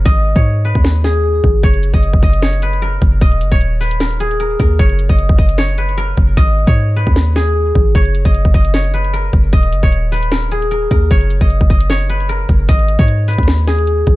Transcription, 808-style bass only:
0, 0, Header, 1, 2, 480
1, 0, Start_track
1, 0, Key_signature, 6, "major"
1, 0, Tempo, 394737
1, 68, Time_signature, 4, 2, 24, 8
1, 17219, End_track
2, 0, Start_track
2, 0, Title_t, "808-style bass"
2, 0, Program_c, 0, 38
2, 69, Note_on_c, 0, 32, 112
2, 421, Note_off_c, 0, 32, 0
2, 435, Note_on_c, 0, 44, 98
2, 896, Note_off_c, 0, 44, 0
2, 915, Note_on_c, 0, 39, 97
2, 1715, Note_off_c, 0, 39, 0
2, 1748, Note_on_c, 0, 32, 101
2, 1979, Note_off_c, 0, 32, 0
2, 1987, Note_on_c, 0, 30, 109
2, 2340, Note_off_c, 0, 30, 0
2, 2355, Note_on_c, 0, 30, 98
2, 2585, Note_off_c, 0, 30, 0
2, 2596, Note_on_c, 0, 30, 102
2, 2700, Note_off_c, 0, 30, 0
2, 2708, Note_on_c, 0, 30, 105
2, 3629, Note_off_c, 0, 30, 0
2, 3669, Note_on_c, 0, 30, 104
2, 3899, Note_off_c, 0, 30, 0
2, 3908, Note_on_c, 0, 27, 108
2, 4148, Note_on_c, 0, 30, 100
2, 4167, Note_off_c, 0, 27, 0
2, 4269, Note_off_c, 0, 30, 0
2, 4275, Note_on_c, 0, 27, 100
2, 5539, Note_off_c, 0, 27, 0
2, 5590, Note_on_c, 0, 39, 102
2, 5820, Note_off_c, 0, 39, 0
2, 5829, Note_on_c, 0, 30, 114
2, 6181, Note_off_c, 0, 30, 0
2, 6195, Note_on_c, 0, 30, 99
2, 6425, Note_off_c, 0, 30, 0
2, 6437, Note_on_c, 0, 30, 102
2, 7466, Note_off_c, 0, 30, 0
2, 7509, Note_on_c, 0, 30, 105
2, 7739, Note_off_c, 0, 30, 0
2, 7748, Note_on_c, 0, 32, 110
2, 8101, Note_off_c, 0, 32, 0
2, 8114, Note_on_c, 0, 44, 102
2, 8575, Note_off_c, 0, 44, 0
2, 8594, Note_on_c, 0, 39, 98
2, 9394, Note_off_c, 0, 39, 0
2, 9429, Note_on_c, 0, 32, 100
2, 9659, Note_off_c, 0, 32, 0
2, 9667, Note_on_c, 0, 30, 113
2, 10020, Note_off_c, 0, 30, 0
2, 10034, Note_on_c, 0, 30, 97
2, 10265, Note_off_c, 0, 30, 0
2, 10276, Note_on_c, 0, 30, 100
2, 10380, Note_off_c, 0, 30, 0
2, 10387, Note_on_c, 0, 30, 104
2, 11309, Note_off_c, 0, 30, 0
2, 11348, Note_on_c, 0, 30, 101
2, 11579, Note_off_c, 0, 30, 0
2, 11587, Note_on_c, 0, 27, 103
2, 11826, Note_on_c, 0, 30, 102
2, 11844, Note_off_c, 0, 27, 0
2, 11948, Note_off_c, 0, 30, 0
2, 11954, Note_on_c, 0, 27, 100
2, 13219, Note_off_c, 0, 27, 0
2, 13268, Note_on_c, 0, 39, 102
2, 13498, Note_off_c, 0, 39, 0
2, 13507, Note_on_c, 0, 30, 114
2, 13860, Note_off_c, 0, 30, 0
2, 13874, Note_on_c, 0, 30, 99
2, 14105, Note_off_c, 0, 30, 0
2, 14115, Note_on_c, 0, 30, 103
2, 15145, Note_off_c, 0, 30, 0
2, 15189, Note_on_c, 0, 30, 102
2, 15419, Note_off_c, 0, 30, 0
2, 15428, Note_on_c, 0, 32, 110
2, 15781, Note_off_c, 0, 32, 0
2, 15795, Note_on_c, 0, 44, 98
2, 16256, Note_off_c, 0, 44, 0
2, 16275, Note_on_c, 0, 39, 97
2, 17075, Note_off_c, 0, 39, 0
2, 17109, Note_on_c, 0, 32, 108
2, 17219, Note_off_c, 0, 32, 0
2, 17219, End_track
0, 0, End_of_file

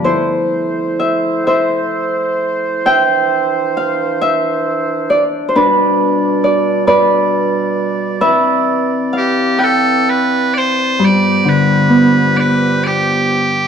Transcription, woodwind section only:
0, 0, Header, 1, 2, 480
1, 0, Start_track
1, 0, Tempo, 936037
1, 26, Time_signature, 6, 3, 24, 8
1, 1465, Tempo, 892857
1, 4345, Tempo, 921659
1, 7190, End_track
2, 0, Start_track
2, 0, Title_t, "Woodwind section"
2, 0, Program_c, 0, 71
2, 33, Note_on_c, 0, 57, 61
2, 37, Note_on_c, 0, 72, 69
2, 38, Note_on_c, 0, 64, 53
2, 1454, Note_off_c, 0, 57, 0
2, 1457, Note_off_c, 0, 64, 0
2, 1462, Note_on_c, 0, 52, 69
2, 1471, Note_on_c, 0, 62, 65
2, 2831, Note_off_c, 0, 52, 0
2, 2831, Note_off_c, 0, 72, 0
2, 2922, Note_on_c, 0, 55, 68
2, 2924, Note_on_c, 0, 47, 69
2, 2927, Note_on_c, 0, 74, 78
2, 4326, Note_off_c, 0, 62, 0
2, 4337, Note_off_c, 0, 55, 0
2, 4338, Note_off_c, 0, 47, 0
2, 4357, Note_on_c, 0, 52, 72
2, 4357, Note_on_c, 0, 60, 65
2, 5776, Note_off_c, 0, 74, 0
2, 5781, Note_off_c, 0, 52, 0
2, 5781, Note_off_c, 0, 60, 0
2, 5795, Note_on_c, 0, 53, 55
2, 5795, Note_on_c, 0, 59, 53
2, 5796, Note_on_c, 0, 67, 60
2, 7131, Note_off_c, 0, 53, 0
2, 7131, Note_off_c, 0, 59, 0
2, 7131, Note_off_c, 0, 67, 0
2, 7190, End_track
0, 0, End_of_file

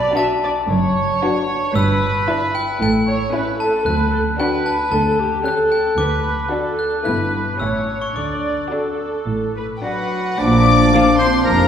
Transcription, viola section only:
0, 0, Header, 1, 2, 480
1, 0, Start_track
1, 0, Key_signature, 2, "major"
1, 0, Tempo, 528634
1, 1592, Time_signature, 4, 2, 24, 8
1, 5434, Tempo, 541516
1, 6874, Tempo, 557103
1, 9274, Tempo, 534283
1, 10427, End_track
2, 0, Start_track
2, 0, Title_t, "Viola section"
2, 0, Program_c, 0, 48
2, 0, Note_on_c, 0, 74, 64
2, 154, Note_on_c, 0, 76, 61
2, 155, Note_off_c, 0, 74, 0
2, 226, Note_off_c, 0, 76, 0
2, 389, Note_on_c, 0, 74, 62
2, 462, Note_off_c, 0, 74, 0
2, 633, Note_on_c, 0, 73, 67
2, 1574, Note_off_c, 0, 73, 0
2, 1591, Note_on_c, 0, 71, 75
2, 2550, Note_off_c, 0, 71, 0
2, 2553, Note_on_c, 0, 69, 50
2, 2626, Note_off_c, 0, 69, 0
2, 2787, Note_on_c, 0, 73, 62
2, 3022, Note_off_c, 0, 73, 0
2, 3028, Note_on_c, 0, 71, 57
2, 3263, Note_off_c, 0, 71, 0
2, 3270, Note_on_c, 0, 69, 55
2, 3499, Note_on_c, 0, 71, 59
2, 3503, Note_off_c, 0, 69, 0
2, 3736, Note_on_c, 0, 69, 58
2, 3741, Note_off_c, 0, 71, 0
2, 3809, Note_off_c, 0, 69, 0
2, 3975, Note_on_c, 0, 71, 63
2, 4451, Note_off_c, 0, 71, 0
2, 4468, Note_on_c, 0, 69, 53
2, 4708, Note_off_c, 0, 69, 0
2, 4712, Note_on_c, 0, 67, 52
2, 4950, Note_off_c, 0, 67, 0
2, 4951, Note_on_c, 0, 69, 54
2, 5424, Note_off_c, 0, 69, 0
2, 5437, Note_on_c, 0, 71, 56
2, 5911, Note_off_c, 0, 71, 0
2, 5913, Note_on_c, 0, 69, 47
2, 6379, Note_off_c, 0, 69, 0
2, 6382, Note_on_c, 0, 71, 46
2, 6859, Note_off_c, 0, 71, 0
2, 6863, Note_on_c, 0, 73, 42
2, 7335, Note_off_c, 0, 73, 0
2, 7355, Note_on_c, 0, 74, 42
2, 7787, Note_off_c, 0, 74, 0
2, 7835, Note_on_c, 0, 69, 45
2, 8517, Note_off_c, 0, 69, 0
2, 8559, Note_on_c, 0, 71, 42
2, 8628, Note_off_c, 0, 71, 0
2, 8800, Note_on_c, 0, 71, 42
2, 9267, Note_off_c, 0, 71, 0
2, 9755, Note_on_c, 0, 53, 56
2, 9756, Note_on_c, 0, 58, 53
2, 9826, Note_off_c, 0, 53, 0
2, 9828, Note_off_c, 0, 58, 0
2, 10427, End_track
0, 0, End_of_file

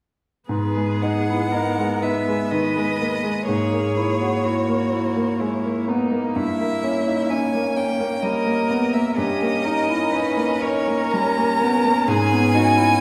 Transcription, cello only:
0, 0, Header, 1, 2, 480
1, 0, Start_track
1, 0, Key_signature, 5, "minor"
1, 0, Tempo, 1052632
1, 228, Time_signature, 3, 2, 24, 8
1, 700, Tempo, 980392
1, 1180, Tempo, 961538
1, 3100, Tempo, 938967
1, 5020, Tempo, 1003344
1, 5500, Tempo, 941915
1, 6461, End_track
2, 0, Start_track
2, 0, Title_t, "Cello"
2, 0, Program_c, 0, 42
2, 226, Note_on_c, 0, 68, 48
2, 692, Note_on_c, 0, 70, 40
2, 699, Note_off_c, 0, 68, 0
2, 936, Note_on_c, 0, 71, 43
2, 943, Note_off_c, 0, 70, 0
2, 1655, Note_off_c, 0, 71, 0
2, 1658, Note_on_c, 0, 68, 48
2, 2143, Note_on_c, 0, 66, 42
2, 2150, Note_off_c, 0, 68, 0
2, 2623, Note_on_c, 0, 64, 39
2, 2630, Note_off_c, 0, 66, 0
2, 2861, Note_on_c, 0, 63, 40
2, 2868, Note_off_c, 0, 64, 0
2, 3100, Note_on_c, 0, 64, 46
2, 3107, Note_off_c, 0, 63, 0
2, 3584, Note_on_c, 0, 61, 38
2, 3592, Note_off_c, 0, 64, 0
2, 4053, Note_off_c, 0, 61, 0
2, 4056, Note_on_c, 0, 70, 51
2, 4536, Note_on_c, 0, 67, 48
2, 4543, Note_off_c, 0, 70, 0
2, 4776, Note_on_c, 0, 70, 50
2, 4784, Note_off_c, 0, 67, 0
2, 5018, Note_on_c, 0, 71, 50
2, 5025, Note_off_c, 0, 70, 0
2, 5254, Note_on_c, 0, 70, 61
2, 5261, Note_off_c, 0, 71, 0
2, 5983, Note_off_c, 0, 70, 0
2, 5986, Note_on_c, 0, 68, 59
2, 6226, Note_on_c, 0, 66, 58
2, 6233, Note_off_c, 0, 68, 0
2, 6461, Note_off_c, 0, 66, 0
2, 6461, End_track
0, 0, End_of_file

